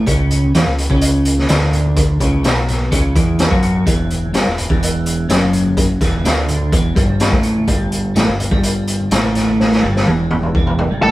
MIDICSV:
0, 0, Header, 1, 5, 480
1, 0, Start_track
1, 0, Tempo, 476569
1, 71, Time_signature, 4, 2, 24, 8
1, 11192, End_track
2, 0, Start_track
2, 0, Title_t, "Lead electric guitar"
2, 0, Program_c, 0, 29
2, 11105, Note_on_c, 0, 69, 89
2, 11192, Note_off_c, 0, 69, 0
2, 11192, End_track
3, 0, Start_track
3, 0, Title_t, "Clean electric guitar"
3, 0, Program_c, 1, 27
3, 70, Note_on_c, 1, 49, 107
3, 541, Note_off_c, 1, 49, 0
3, 552, Note_on_c, 1, 52, 100
3, 662, Note_off_c, 1, 52, 0
3, 678, Note_on_c, 1, 49, 70
3, 864, Note_off_c, 1, 49, 0
3, 910, Note_on_c, 1, 49, 102
3, 1498, Note_off_c, 1, 49, 0
3, 1502, Note_on_c, 1, 50, 97
3, 2214, Note_off_c, 1, 50, 0
3, 2219, Note_on_c, 1, 49, 90
3, 2453, Note_off_c, 1, 49, 0
3, 2458, Note_on_c, 1, 47, 89
3, 2931, Note_off_c, 1, 47, 0
3, 2935, Note_on_c, 1, 49, 101
3, 3170, Note_off_c, 1, 49, 0
3, 3177, Note_on_c, 1, 52, 98
3, 3526, Note_off_c, 1, 52, 0
3, 3530, Note_on_c, 1, 54, 89
3, 3887, Note_off_c, 1, 54, 0
3, 3887, Note_on_c, 1, 40, 98
3, 4363, Note_off_c, 1, 40, 0
3, 4367, Note_on_c, 1, 43, 97
3, 4485, Note_off_c, 1, 43, 0
3, 4496, Note_on_c, 1, 40, 64
3, 4689, Note_off_c, 1, 40, 0
3, 4733, Note_on_c, 1, 40, 103
3, 5324, Note_off_c, 1, 40, 0
3, 5328, Note_on_c, 1, 42, 95
3, 6046, Note_off_c, 1, 42, 0
3, 6056, Note_on_c, 1, 40, 94
3, 6290, Note_off_c, 1, 40, 0
3, 6292, Note_on_c, 1, 50, 97
3, 6768, Note_off_c, 1, 50, 0
3, 6776, Note_on_c, 1, 40, 100
3, 7002, Note_off_c, 1, 40, 0
3, 7006, Note_on_c, 1, 43, 101
3, 7366, Note_off_c, 1, 43, 0
3, 7371, Note_on_c, 1, 45, 95
3, 7729, Note_off_c, 1, 45, 0
3, 7736, Note_on_c, 1, 43, 105
3, 8211, Note_on_c, 1, 45, 102
3, 8212, Note_off_c, 1, 43, 0
3, 8329, Note_off_c, 1, 45, 0
3, 8333, Note_on_c, 1, 43, 66
3, 8530, Note_off_c, 1, 43, 0
3, 8574, Note_on_c, 1, 43, 107
3, 9172, Note_off_c, 1, 43, 0
3, 9178, Note_on_c, 1, 45, 90
3, 9895, Note_off_c, 1, 45, 0
3, 9897, Note_on_c, 1, 43, 100
3, 10135, Note_off_c, 1, 43, 0
3, 10139, Note_on_c, 1, 40, 94
3, 10617, Note_off_c, 1, 40, 0
3, 10628, Note_on_c, 1, 40, 102
3, 10982, Note_off_c, 1, 40, 0
3, 10986, Note_on_c, 1, 43, 90
3, 11102, Note_off_c, 1, 43, 0
3, 11112, Note_on_c, 1, 45, 91
3, 11192, Note_off_c, 1, 45, 0
3, 11192, End_track
4, 0, Start_track
4, 0, Title_t, "Picked electric bass"
4, 0, Program_c, 2, 34
4, 67, Note_on_c, 2, 37, 93
4, 513, Note_off_c, 2, 37, 0
4, 553, Note_on_c, 2, 40, 85
4, 662, Note_off_c, 2, 40, 0
4, 670, Note_on_c, 2, 37, 75
4, 891, Note_off_c, 2, 37, 0
4, 904, Note_on_c, 2, 37, 93
4, 1463, Note_off_c, 2, 37, 0
4, 1510, Note_on_c, 2, 38, 92
4, 2185, Note_off_c, 2, 38, 0
4, 2223, Note_on_c, 2, 37, 94
4, 2445, Note_off_c, 2, 37, 0
4, 2470, Note_on_c, 2, 35, 89
4, 2911, Note_off_c, 2, 35, 0
4, 2943, Note_on_c, 2, 37, 90
4, 3164, Note_off_c, 2, 37, 0
4, 3178, Note_on_c, 2, 40, 88
4, 3513, Note_off_c, 2, 40, 0
4, 3535, Note_on_c, 2, 42, 86
4, 3871, Note_off_c, 2, 42, 0
4, 3891, Note_on_c, 2, 28, 91
4, 4340, Note_off_c, 2, 28, 0
4, 4381, Note_on_c, 2, 31, 80
4, 4491, Note_off_c, 2, 31, 0
4, 4504, Note_on_c, 2, 28, 69
4, 4724, Note_off_c, 2, 28, 0
4, 4734, Note_on_c, 2, 28, 89
4, 5296, Note_off_c, 2, 28, 0
4, 5335, Note_on_c, 2, 30, 94
4, 6016, Note_off_c, 2, 30, 0
4, 6054, Note_on_c, 2, 28, 99
4, 6279, Note_off_c, 2, 28, 0
4, 6298, Note_on_c, 2, 38, 86
4, 6745, Note_off_c, 2, 38, 0
4, 6772, Note_on_c, 2, 28, 79
4, 6998, Note_off_c, 2, 28, 0
4, 7015, Note_on_c, 2, 31, 90
4, 7352, Note_off_c, 2, 31, 0
4, 7374, Note_on_c, 2, 33, 89
4, 7712, Note_off_c, 2, 33, 0
4, 7730, Note_on_c, 2, 31, 97
4, 8182, Note_off_c, 2, 31, 0
4, 8220, Note_on_c, 2, 33, 85
4, 8332, Note_off_c, 2, 33, 0
4, 8342, Note_on_c, 2, 31, 82
4, 8565, Note_off_c, 2, 31, 0
4, 8576, Note_on_c, 2, 31, 93
4, 9140, Note_off_c, 2, 31, 0
4, 9183, Note_on_c, 2, 33, 89
4, 9865, Note_off_c, 2, 33, 0
4, 9904, Note_on_c, 2, 31, 96
4, 10129, Note_off_c, 2, 31, 0
4, 10149, Note_on_c, 2, 28, 84
4, 10596, Note_off_c, 2, 28, 0
4, 10625, Note_on_c, 2, 28, 95
4, 10963, Note_off_c, 2, 28, 0
4, 10980, Note_on_c, 2, 31, 77
4, 11090, Note_off_c, 2, 31, 0
4, 11096, Note_on_c, 2, 33, 96
4, 11192, Note_off_c, 2, 33, 0
4, 11192, End_track
5, 0, Start_track
5, 0, Title_t, "Drums"
5, 66, Note_on_c, 9, 36, 93
5, 66, Note_on_c, 9, 42, 78
5, 70, Note_on_c, 9, 64, 65
5, 166, Note_off_c, 9, 36, 0
5, 167, Note_off_c, 9, 42, 0
5, 170, Note_off_c, 9, 64, 0
5, 307, Note_on_c, 9, 42, 57
5, 314, Note_on_c, 9, 64, 64
5, 408, Note_off_c, 9, 42, 0
5, 415, Note_off_c, 9, 64, 0
5, 441, Note_on_c, 9, 63, 72
5, 542, Note_off_c, 9, 63, 0
5, 548, Note_on_c, 9, 42, 77
5, 561, Note_on_c, 9, 38, 93
5, 649, Note_off_c, 9, 42, 0
5, 661, Note_off_c, 9, 38, 0
5, 788, Note_on_c, 9, 42, 74
5, 889, Note_off_c, 9, 42, 0
5, 905, Note_on_c, 9, 36, 90
5, 1005, Note_off_c, 9, 36, 0
5, 1019, Note_on_c, 9, 42, 98
5, 1120, Note_off_c, 9, 42, 0
5, 1259, Note_on_c, 9, 42, 69
5, 1360, Note_off_c, 9, 42, 0
5, 1390, Note_on_c, 9, 63, 80
5, 1395, Note_on_c, 9, 38, 34
5, 1490, Note_off_c, 9, 63, 0
5, 1496, Note_off_c, 9, 38, 0
5, 1496, Note_on_c, 9, 42, 87
5, 1508, Note_on_c, 9, 38, 108
5, 1597, Note_off_c, 9, 42, 0
5, 1609, Note_off_c, 9, 38, 0
5, 1629, Note_on_c, 9, 63, 75
5, 1636, Note_on_c, 9, 38, 33
5, 1730, Note_off_c, 9, 63, 0
5, 1737, Note_off_c, 9, 38, 0
5, 1741, Note_on_c, 9, 42, 72
5, 1748, Note_on_c, 9, 64, 72
5, 1842, Note_off_c, 9, 42, 0
5, 1849, Note_off_c, 9, 64, 0
5, 1868, Note_on_c, 9, 63, 73
5, 1968, Note_off_c, 9, 63, 0
5, 1977, Note_on_c, 9, 42, 91
5, 1980, Note_on_c, 9, 36, 92
5, 1987, Note_on_c, 9, 64, 65
5, 2078, Note_off_c, 9, 42, 0
5, 2081, Note_off_c, 9, 36, 0
5, 2088, Note_off_c, 9, 64, 0
5, 2218, Note_on_c, 9, 42, 64
5, 2220, Note_on_c, 9, 36, 88
5, 2319, Note_off_c, 9, 42, 0
5, 2321, Note_off_c, 9, 36, 0
5, 2346, Note_on_c, 9, 63, 80
5, 2447, Note_off_c, 9, 63, 0
5, 2458, Note_on_c, 9, 42, 80
5, 2470, Note_on_c, 9, 38, 99
5, 2558, Note_off_c, 9, 42, 0
5, 2571, Note_off_c, 9, 38, 0
5, 2702, Note_on_c, 9, 42, 71
5, 2710, Note_on_c, 9, 64, 71
5, 2714, Note_on_c, 9, 38, 35
5, 2803, Note_off_c, 9, 42, 0
5, 2811, Note_off_c, 9, 64, 0
5, 2815, Note_off_c, 9, 38, 0
5, 2940, Note_on_c, 9, 36, 107
5, 2940, Note_on_c, 9, 42, 90
5, 3041, Note_off_c, 9, 36, 0
5, 3041, Note_off_c, 9, 42, 0
5, 3179, Note_on_c, 9, 36, 108
5, 3180, Note_on_c, 9, 42, 66
5, 3279, Note_off_c, 9, 36, 0
5, 3280, Note_off_c, 9, 42, 0
5, 3306, Note_on_c, 9, 63, 60
5, 3406, Note_off_c, 9, 63, 0
5, 3411, Note_on_c, 9, 42, 88
5, 3423, Note_on_c, 9, 38, 105
5, 3425, Note_on_c, 9, 63, 51
5, 3512, Note_off_c, 9, 42, 0
5, 3524, Note_off_c, 9, 38, 0
5, 3526, Note_off_c, 9, 63, 0
5, 3536, Note_on_c, 9, 36, 103
5, 3554, Note_on_c, 9, 63, 67
5, 3637, Note_off_c, 9, 36, 0
5, 3650, Note_on_c, 9, 42, 66
5, 3654, Note_off_c, 9, 63, 0
5, 3671, Note_on_c, 9, 64, 67
5, 3751, Note_off_c, 9, 42, 0
5, 3772, Note_off_c, 9, 64, 0
5, 3794, Note_on_c, 9, 64, 75
5, 3893, Note_on_c, 9, 42, 82
5, 3894, Note_off_c, 9, 64, 0
5, 3895, Note_on_c, 9, 36, 98
5, 3921, Note_on_c, 9, 64, 62
5, 3994, Note_off_c, 9, 42, 0
5, 3995, Note_off_c, 9, 36, 0
5, 4022, Note_off_c, 9, 64, 0
5, 4132, Note_on_c, 9, 42, 56
5, 4165, Note_on_c, 9, 64, 61
5, 4233, Note_off_c, 9, 42, 0
5, 4266, Note_off_c, 9, 64, 0
5, 4282, Note_on_c, 9, 63, 69
5, 4369, Note_on_c, 9, 42, 79
5, 4381, Note_on_c, 9, 38, 99
5, 4383, Note_off_c, 9, 63, 0
5, 4470, Note_off_c, 9, 42, 0
5, 4482, Note_off_c, 9, 38, 0
5, 4611, Note_on_c, 9, 42, 76
5, 4626, Note_on_c, 9, 64, 73
5, 4712, Note_off_c, 9, 42, 0
5, 4726, Note_off_c, 9, 64, 0
5, 4734, Note_on_c, 9, 36, 89
5, 4835, Note_off_c, 9, 36, 0
5, 4860, Note_on_c, 9, 42, 89
5, 4961, Note_off_c, 9, 42, 0
5, 5095, Note_on_c, 9, 42, 68
5, 5195, Note_off_c, 9, 42, 0
5, 5332, Note_on_c, 9, 42, 90
5, 5344, Note_on_c, 9, 38, 105
5, 5433, Note_off_c, 9, 42, 0
5, 5445, Note_off_c, 9, 38, 0
5, 5452, Note_on_c, 9, 63, 77
5, 5552, Note_off_c, 9, 63, 0
5, 5569, Note_on_c, 9, 64, 74
5, 5570, Note_on_c, 9, 42, 69
5, 5670, Note_off_c, 9, 64, 0
5, 5671, Note_off_c, 9, 42, 0
5, 5703, Note_on_c, 9, 63, 77
5, 5804, Note_off_c, 9, 63, 0
5, 5812, Note_on_c, 9, 36, 98
5, 5812, Note_on_c, 9, 42, 81
5, 5817, Note_on_c, 9, 64, 68
5, 5913, Note_off_c, 9, 36, 0
5, 5913, Note_off_c, 9, 42, 0
5, 5918, Note_off_c, 9, 64, 0
5, 6052, Note_on_c, 9, 36, 92
5, 6052, Note_on_c, 9, 42, 64
5, 6059, Note_on_c, 9, 64, 67
5, 6064, Note_on_c, 9, 38, 27
5, 6152, Note_off_c, 9, 36, 0
5, 6152, Note_off_c, 9, 42, 0
5, 6160, Note_off_c, 9, 64, 0
5, 6164, Note_off_c, 9, 38, 0
5, 6185, Note_on_c, 9, 63, 86
5, 6286, Note_off_c, 9, 63, 0
5, 6294, Note_on_c, 9, 42, 79
5, 6306, Note_on_c, 9, 38, 89
5, 6395, Note_off_c, 9, 42, 0
5, 6407, Note_off_c, 9, 38, 0
5, 6530, Note_on_c, 9, 42, 69
5, 6539, Note_on_c, 9, 64, 74
5, 6631, Note_off_c, 9, 42, 0
5, 6640, Note_off_c, 9, 64, 0
5, 6773, Note_on_c, 9, 36, 112
5, 6773, Note_on_c, 9, 42, 87
5, 6874, Note_off_c, 9, 36, 0
5, 6874, Note_off_c, 9, 42, 0
5, 7014, Note_on_c, 9, 36, 111
5, 7015, Note_on_c, 9, 42, 74
5, 7114, Note_off_c, 9, 36, 0
5, 7116, Note_off_c, 9, 42, 0
5, 7143, Note_on_c, 9, 63, 73
5, 7244, Note_off_c, 9, 63, 0
5, 7249, Note_on_c, 9, 42, 88
5, 7261, Note_on_c, 9, 38, 108
5, 7350, Note_off_c, 9, 42, 0
5, 7362, Note_off_c, 9, 38, 0
5, 7372, Note_on_c, 9, 36, 106
5, 7384, Note_on_c, 9, 63, 72
5, 7473, Note_off_c, 9, 36, 0
5, 7483, Note_on_c, 9, 42, 68
5, 7485, Note_off_c, 9, 63, 0
5, 7584, Note_off_c, 9, 42, 0
5, 7620, Note_on_c, 9, 63, 73
5, 7721, Note_off_c, 9, 63, 0
5, 7728, Note_on_c, 9, 42, 78
5, 7733, Note_on_c, 9, 36, 89
5, 7744, Note_on_c, 9, 64, 70
5, 7829, Note_off_c, 9, 42, 0
5, 7834, Note_off_c, 9, 36, 0
5, 7845, Note_off_c, 9, 64, 0
5, 7974, Note_on_c, 9, 42, 58
5, 7988, Note_on_c, 9, 64, 68
5, 8074, Note_off_c, 9, 42, 0
5, 8088, Note_off_c, 9, 64, 0
5, 8103, Note_on_c, 9, 63, 71
5, 8204, Note_off_c, 9, 63, 0
5, 8214, Note_on_c, 9, 42, 75
5, 8226, Note_on_c, 9, 38, 94
5, 8314, Note_off_c, 9, 42, 0
5, 8326, Note_off_c, 9, 38, 0
5, 8458, Note_on_c, 9, 42, 71
5, 8466, Note_on_c, 9, 64, 72
5, 8559, Note_off_c, 9, 42, 0
5, 8567, Note_off_c, 9, 64, 0
5, 8576, Note_on_c, 9, 36, 97
5, 8677, Note_off_c, 9, 36, 0
5, 8695, Note_on_c, 9, 42, 82
5, 8795, Note_off_c, 9, 42, 0
5, 8937, Note_on_c, 9, 42, 62
5, 9037, Note_off_c, 9, 42, 0
5, 9065, Note_on_c, 9, 63, 78
5, 9166, Note_off_c, 9, 63, 0
5, 9175, Note_on_c, 9, 42, 93
5, 9187, Note_on_c, 9, 38, 102
5, 9275, Note_off_c, 9, 42, 0
5, 9287, Note_off_c, 9, 38, 0
5, 9306, Note_on_c, 9, 63, 65
5, 9407, Note_off_c, 9, 63, 0
5, 9418, Note_on_c, 9, 42, 72
5, 9422, Note_on_c, 9, 64, 62
5, 9430, Note_on_c, 9, 38, 38
5, 9519, Note_off_c, 9, 42, 0
5, 9523, Note_off_c, 9, 64, 0
5, 9531, Note_off_c, 9, 38, 0
5, 9546, Note_on_c, 9, 63, 67
5, 9647, Note_off_c, 9, 63, 0
5, 9669, Note_on_c, 9, 38, 53
5, 9672, Note_on_c, 9, 64, 57
5, 9769, Note_off_c, 9, 38, 0
5, 9772, Note_off_c, 9, 64, 0
5, 9792, Note_on_c, 9, 38, 47
5, 9893, Note_off_c, 9, 38, 0
5, 9904, Note_on_c, 9, 64, 69
5, 10005, Note_off_c, 9, 64, 0
5, 10023, Note_on_c, 9, 63, 72
5, 10033, Note_on_c, 9, 38, 57
5, 10123, Note_off_c, 9, 63, 0
5, 10133, Note_off_c, 9, 38, 0
5, 10141, Note_on_c, 9, 48, 61
5, 10241, Note_off_c, 9, 48, 0
5, 10379, Note_on_c, 9, 48, 81
5, 10393, Note_on_c, 9, 64, 72
5, 10480, Note_off_c, 9, 48, 0
5, 10494, Note_off_c, 9, 64, 0
5, 10503, Note_on_c, 9, 47, 52
5, 10603, Note_off_c, 9, 47, 0
5, 10624, Note_on_c, 9, 36, 115
5, 10725, Note_off_c, 9, 36, 0
5, 10745, Note_on_c, 9, 47, 70
5, 10846, Note_off_c, 9, 47, 0
5, 10864, Note_on_c, 9, 45, 89
5, 10964, Note_off_c, 9, 45, 0
5, 11001, Note_on_c, 9, 63, 58
5, 11101, Note_off_c, 9, 63, 0
5, 11105, Note_on_c, 9, 45, 87
5, 11113, Note_on_c, 9, 63, 59
5, 11192, Note_off_c, 9, 45, 0
5, 11192, Note_off_c, 9, 63, 0
5, 11192, End_track
0, 0, End_of_file